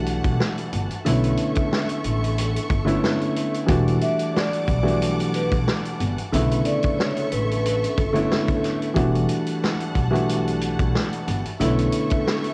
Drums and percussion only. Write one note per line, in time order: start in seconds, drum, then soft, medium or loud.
0.06 closed hi-hat medium
0.24 kick medium
0.24 closed hi-hat medium
0.40 snare loud
0.58 closed hi-hat soft
0.73 closed hi-hat medium
0.91 closed hi-hat soft
1.06 closed hi-hat loud
1.24 closed hi-hat medium
1.37 closed hi-hat medium
1.55 kick medium
1.55 closed hi-hat soft
1.73 snare loud
1.89 closed hi-hat medium
2.04 closed hi-hat medium
2.24 closed hi-hat medium
2.38 closed hi-hat loud
2.56 closed hi-hat medium
2.70 kick loud
2.70 closed hi-hat medium
2.88 closed hi-hat medium
3.04 snare loud
3.21 closed hi-hat soft
3.36 closed hi-hat medium
3.54 closed hi-hat medium
3.69 kick loud
3.69 closed hi-hat loud
3.88 closed hi-hat medium
4.01 closed hi-hat medium
4.19 closed hi-hat medium
4.36 snare loud
4.53 closed hi-hat medium
4.68 kick medium
4.68 closed hi-hat medium
4.88 closed hi-hat medium
5.02 closed hi-hat loud
5.20 closed hi-hat medium
5.34 closed hi-hat medium
5.52 kick medium
5.52 closed hi-hat medium
5.68 snare loud
5.85 closed hi-hat soft
6.00 closed hi-hat medium
6.18 closed hi-hat medium
6.34 closed hi-hat loud
6.51 closed hi-hat medium
6.65 closed hi-hat medium
6.83 kick medium
6.83 closed hi-hat medium
7.00 snare loud
7.17 closed hi-hat medium
7.32 closed hi-hat medium
7.51 closed hi-hat medium
7.66 closed hi-hat medium
7.84 closed hi-hat medium
7.98 kick loud
7.98 closed hi-hat medium
8.15 closed hi-hat medium
8.31 snare loud
8.48 kick loud
8.48 closed hi-hat soft
8.64 snare soft
8.64 closed hi-hat medium
8.82 closed hi-hat soft
8.96 kick loud
8.96 closed hi-hat loud
9.15 closed hi-hat medium
9.29 closed hi-hat medium
9.46 closed hi-hat medium
9.64 snare loud
9.80 closed hi-hat medium
9.95 kick medium
9.95 closed hi-hat medium
10.15 closed hi-hat medium
10.29 closed hi-hat medium
10.47 closed hi-hat medium
10.61 closed hi-hat medium
10.79 kick loud
10.79 closed hi-hat medium
10.95 snare loud
11.13 closed hi-hat soft
11.28 closed hi-hat medium
11.45 closed hi-hat medium
11.61 closed hi-hat loud
11.79 closed hi-hat medium
11.92 closed hi-hat medium
12.10 kick medium
12.10 closed hi-hat medium
12.27 snare loud
12.44 closed hi-hat medium